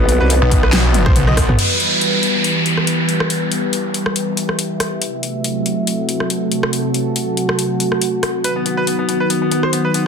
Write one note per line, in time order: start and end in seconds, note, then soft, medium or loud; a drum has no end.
0.00 0.18 B1 loud
0.00 1.55 D#3 medium
0.00 1.55 F#3 medium
0.00 1.55 B3 medium
0.00 1.55 F#4 medium
0.00 1.59 F#4 medium
0.00 10.07 B4 loud
0.00 1.59 D#5 loud
0.09 0.16 B3 medium
0.09 closed hi-hat medium
0.20 0.40 C2 loud
0.20 0.27 B4 loud
0.30 0.37 B3 medium
0.30 closed hi-hat medium
0.42 0.61 B1 loud
0.42 0.48 B3 medium
0.51 0.59 B3 medium
0.51 kick medium
0.51 closed hi-hat medium
0.63 1.04 B1 loud
0.63 0.69 B4 medium
0.63 cross-stick medium
0.73 0.80 B3 medium
0.73 snare loud
0.73 clap medium
0.73 closed hi-hat medium
0.85 0.91 B3 medium
0.94 1.02 B3 medium
0.94 closed hi-hat medium
0.94 high tom medium
1.06 1.47 B1 loud
1.06 1.12 C5 medium
1.06 kick loud
1.06 cross-stick medium
1.16 1.23 B3 medium
1.16 closed hi-hat medium
1.16 mid tom medium
1.27 1.34 D#5 loud
1.27 cross-stick medium
1.27 mid tom medium
1.37 1.45 B3 medium
1.37 kick medium
1.37 cross-stick medium
1.37 open hi-hat loud
1.49 1.57 B1 loud
1.49 1.55 B3 medium
1.49 mid tom medium
1.59 4.98 E3 medium
1.59 4.98 G3 medium
1.59 4.98 B3 medium
1.59 4.98 G4 medium
1.59 5.02 G4 medium
1.59 closed hi-hat medium
1.59 crash medium
1.59 downlifter medium
1.80 closed hi-hat medium
2.01 closed hi-hat medium
2.23 closed hi-hat medium
2.44 closed hi-hat medium
2.66 closed hi-hat soft
2.77 cross-stick soft
2.87 closed hi-hat medium
3.02 8.44 E5 medium
3.09 closed hi-hat soft
3.20 cross-stick medium
3.30 closed hi-hat medium
3.52 closed hi-hat soft
3.73 closed hi-hat medium
3.94 closed hi-hat soft
4.06 cross-stick medium
4.16 closed hi-hat medium
4.37 closed hi-hat soft
4.49 cross-stick soft
4.59 closed hi-hat medium
4.80 cross-stick medium
4.80 closed hi-hat medium
5.01 8.41 C3 medium
5.01 8.41 F#3 medium
5.01 8.41 A3 medium
5.01 10.07 F#4 medium
5.01 closed hi-hat medium
5.23 closed hi-hat soft
5.44 closed hi-hat medium
5.59 9.17 A5 medium
5.66 closed hi-hat soft
5.87 closed hi-hat medium
6.09 closed hi-hat soft
6.20 cross-stick soft
6.30 closed hi-hat medium
6.52 closed hi-hat soft
6.63 cross-stick medium
6.73 closed hi-hat medium
6.94 closed hi-hat soft
7.16 closed hi-hat medium
7.37 closed hi-hat soft
7.49 cross-stick medium
7.59 closed hi-hat medium
7.80 closed hi-hat soft
7.92 cross-stick soft
8.02 closed hi-hat medium
8.23 cross-stick medium
8.23 closed hi-hat soft
8.44 10.07 D#3 medium
8.44 10.07 F#3 medium
8.44 10.07 B3 medium
8.44 8.52 B4 medium
8.44 closed hi-hat medium
8.56 8.62 B3 medium
8.66 8.73 B3 medium
8.66 closed hi-hat soft
8.77 8.84 B4 medium
8.87 8.95 B3 medium
8.87 closed hi-hat medium
8.99 9.05 B3 medium
9.06 9.16 B3 medium
9.06 10.07 D#5 medium
9.06 closed hi-hat soft
9.20 9.26 B4 medium
9.30 9.37 B3 medium
9.30 closed hi-hat medium
9.42 9.48 B3 medium
9.52 9.59 B3 medium
9.52 closed hi-hat soft
9.63 9.69 C5 medium
9.63 cross-stick medium
9.73 9.80 B3 medium
9.73 closed hi-hat medium
9.85 9.91 B4 medium
9.94 10.02 B3 medium
9.94 closed hi-hat soft